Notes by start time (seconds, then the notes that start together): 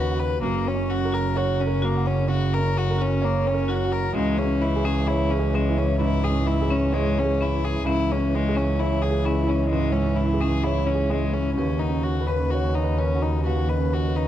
Already playing: D#2 C#3 C#4 F#4 B4 C#5
0.11 F#4
0.20 B4
0.42 F#1 F#2 C#3 A#3 F#4
0.66 C#4 C#5
0.74 C#4
0.90 F#4
1.05 A#4
1.12 F#4 A#4
1.36 F#4 C#5
1.59 C#4 C#5
1.67 A#4
1.82 A#3 F#4
1.97 F#4
2.06 C#4 F#5
2.28 C#3 F#4
2.53 A#4
2.58 C#4
2.76 F#4 A#4
2.90 A#4
2.98 C#4 F#4
3.22 A#3 C#5
3.45 C#4 C#5
3.54 A#4
3.68 F#4
3.85 F#4
3.92 A#4
4.15 C#2 E3 G#3 C#4
4.38 C#4 G#4
4.45 C#4
4.62 E4
4.76 G#4
4.85 C#4 G#4
5.07 E4 G#4 C#5
5.30 C#4 G#4
5.39 G#4
5.54 G#3 C#4
5.69 E4
5.78 C#4 C#5
6.00 G#2 C#4 E4
6.24 E4 G#4
6.30 C#4
6.47 E4
6.61 G#4
6.71 C#4
6.93 G#3 G#4 C#5
7.17 C#4 G#4
7.25 G#4
7.41 C#4 E4
7.55 E4
7.64 G#4
7.85 C#2 E3 C#4 E4
8.10 C#4 G#4
8.17 C#4
8.34 G#3
8.49 G#4
8.55 C#4
8.79 E4 G#4 C#5
9.02 G#4
9.11 G#4
9.26 C#4 E4
9.42 E4
9.48 C#4 C#5
9.70 G#2 G#3 C#4
9.92 C#4 E4
10.03 C#4
10.16 E4
10.33 G#4
10.41 C#4 G#4
10.64 E4 G#4 C#5
10.86 C#4 G#4
10.95 G#4
11.10 G#3 C#4
11.26 E4
11.33 C#4
11.55 D#2 C#3 C#4 B4
11.79 D#4 F#5
11.89 C#4
12.03 F#4
12.21 B4
12.27 B4
12.51 F#4 C#5 F#5
12.75 D#4 F#5
12.84 B4
12.98 C#4 B4
13.15 F#4
13.22 D#4 B5
13.45 D#2 F#4 B4
13.69 B4 D#5
13.77 C#4
13.92 F#4 D#5
14.08 B4
14.16 D#4 B4